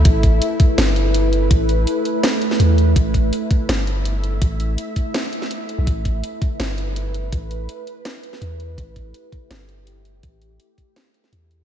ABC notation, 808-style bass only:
X:1
M:4/4
L:1/16
Q:1/4=165
K:C
V:1 name="808-style bass" clef=bass
A,,,4 z4 G,,,8 | A,,,4 z8 E,,4 | A,,,4 z4 G,,,8 | A,,,4 z8 z3 B,,, |
A,,,4 z4 G,,,8 | A,,,4 z8 E,,4 | A,,,4 z4 G,,,8 | A,,,4 z8 E,,4 |]